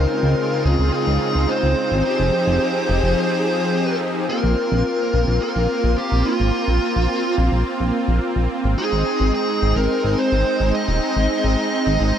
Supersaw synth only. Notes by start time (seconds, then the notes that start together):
Already playing: C#3 G#3 C4 D#4 F4
2.05 F3 G4 G#4
4.29 A#3 C4 F4
8.78 G#3 D#4